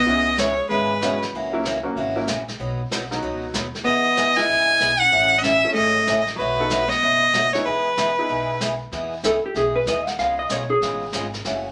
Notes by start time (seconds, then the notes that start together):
Already playing: B3 D#5
0.06 C#2 C#3 E3 G#3 B3 C#4 E4 G#4, brush sweep
0.38 C#3 E3 G#3 B3 C#4 G#4 C#5, snare, hi-hat pedal
0.69 G#1 C#3 E3 G#3 B3 C#4 G#4 B4, brush sweep
1.01 C#3 E3 G#3 B3 C#4 F#4 G#4, snare, hi-hat pedal
1.22 snare
1.33 C#2 C#3 E3 A#3 C#4 F#4, brush sweep
1.53 F#3 A#3 C#4 E4
1.65 C#3 E3 A#3 C#4 F#4, snare, hi-hat pedal
1.83 F#3 A#3 C#4 F#4
1.96 G#1 C#3 E3 A#3 C#4 F#4, brush sweep
2.16 F#3 A#3 C#4 E4
2.27 A#1 C#3 E3 A#3 C#4 F#4, snare, hi-hat pedal
2.48 snare
2.59 B1 B2 F#3 B3 D#4 F#4, brush sweep
2.91 B1 B2 F#3 B3 D#4 F#4, snare, hi-hat pedal
3.11 F#3 B3 D#4 F#4, snare
3.22 C#2 B2 F#3 B3 D#4 F#4, brush sweep
3.54 D#2 B2 F#3 B3 D#4 F#4, snare, hi-hat pedal
3.75 snare
3.84 E2 E3 B3 D#4 G#4 D#5, brush sweep
4.17 E3 B3 D#4 G#4, snare, hi-hat pedal
4.36 B3 E4 G#4 D#5 G#5, snare
4.49 C#2 E3 B3 D#4 G#4, brush sweep
4.80 B1 E3 B3 D#4 G#4, snare, hi-hat pedal
4.99 C#4 F#5
5.11 A1 C#3 E3 A3 C#4 G#4, brush sweep
5.37 B3 D#5
5.42 C#3 E3 A3 C#4 G#4 E5, snare, hi-hat pedal
5.64 A3 C#4 E4 G#4
5.74 G#1 C#3 E3 A3 C#4 G#4 D#5, brush sweep
6.07 A1 C#3 E3 A3 C#4 G#4, snare, hi-hat pedal
6.27 snare
6.36 B1 B2 F#3 B4, brush sweep
6.40 A3 D#4 F#4
6.59 B3 D#4 F#4 A4
6.70 B2 F#3 A3 D#4 F#4, snare, hi-hat pedal
6.88 B3 D#5, snare
7.01 F#1 B2 F#3 A3 D#4 F#4, brush sweep
7.34 B2 F#3 A3 D#4 F#4, snare, hi-hat pedal
7.52 A3 B3 D#4 E4 G#4 C#5, snare
7.65 E2 E3 G#3 B3 D#4 G#4 B4, brush sweep
7.97 E3 B3 D#4 G#4, snare, hi-hat pedal
8.19 B3 D#4 E4 G#4
8.29 B1 E3 B3 D#4 G#4, brush sweep
8.61 E3 B3 D#4 G#4, snare, hi-hat pedal
8.92 E2 E3 B3 D#4 G#4, brush sweep, snare
9.23 C#2 E3 B3 D#4 G#4 A4, snare, hi-hat pedal
9.44 G4, muted upright bass stroke
9.55 B1 E3 B3 D#4 G#4, brush sweep, snare
9.76 B4
9.86 D#2 E3 B3 D#4 G#4 D#5, snare, hi-hat pedal
10.07 F#5, snare
10.18 C#2 C#3 G#3 B3 F4 G#4 F5, brush sweep, snare
10.39 D#5
10.49 B1 C#3 G#3 B3 F4 G#4 C#5, snare, hi-hat pedal
10.70 G#4
10.81 A1 C#3 G#3 B3 F4 G#4, brush sweep, snare
11.12 G#1 C#3 G#3 B3 F4 G#4, snare, hi-hat pedal
11.34 snare
11.44 F#1 C#3 E3 A3 C#4 F#4, brush sweep, snare